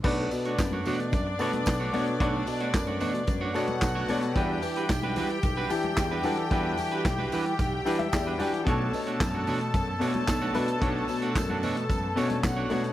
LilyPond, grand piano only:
\new Staff \with { instrumentName = "Grand piano" } { \time 4/4 \key b \minor \tempo 4 = 111 << { r1 | r1 | r1 | r2 r8 g''16 e''16 d''8 d''8 |
r1 | r1 | } \\ { <b a' b' d''>4.~ <b a' b' d''>16 r8. <b a' b' d''>4 <b a' cis'' d''>8 | <b a' b' d''>4.~ <b a' b' d''>16 r8. <b a' cis'' d''>4 <b a' cis'' d''>8 | <e d' e' g'>4.~ <e d' e' g'>16 r8. <e d' e' g'>4 <e d' fis' a'>8 | <e d' e' g'>4.~ <e d' e' g'>16 r8. <e d' e' g'>4 <e d' fis' g'>8 |
<b, a cis' d' cis''>4.~ <b, a cis' d' cis''>16 r8. <b, a d' cis''>4 <b, a d' b'>8 | <b, a d' cis''>4.~ <b, a d' cis''>16 r8. <b, a cis' d' cis''>4 <b, a d' cis''>8 | } >> }